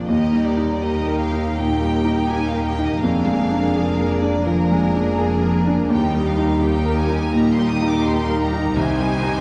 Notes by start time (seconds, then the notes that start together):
Already playing: A#1 F2 F3 D4 A#4
0.07 D#2 A#3 D#4 G4 A#4 D#5
0.33 G3
0.44 D5
0.57 D#4
0.81 A#3 D#4 G4 A#4 D#5
1.08 A#4
1.19 F5
1.32 D#4
1.56 A#2 A#3 D#4 G4 A#4 G5
1.81 G3
2.05 D#4
2.28 G4 G#5
2.48 F5
2.54 A#4
2.65 G5
2.79 D#4
2.85 D#5
3.01 F1 F2 A#3 D4 G#4 A#4 F5
3.26 G#3
3.51 D4
3.76 G#4
3.99 A#4
4.11 D5
4.22 D4
4.46 F3 A#3 D4 G#4 A#4
4.71 G#3
4.96 D4
5.19 G#4
5.43 A#4
5.67 D4
5.90 D#2 G3 A#3 D#4 G4 A#4 G5
6.15 G3
6.27 F5
6.38 D#4
6.62 G3 D#4 G4 A#4 G5
6.85 A#4
6.98 G#5
7.09 D#4
7.33 A#2 G3 D#4 G4 A#4 A#5
7.54 C6
7.59 G3
7.70 D#6
7.82 D#4
7.88 D6
8.06 G4 C6
8.30 A#4
8.42 A#5
8.53 D#4
8.76 C2 D#3 C4 D#4 G4 C5 G#5
9.00 G3
9.22 D#4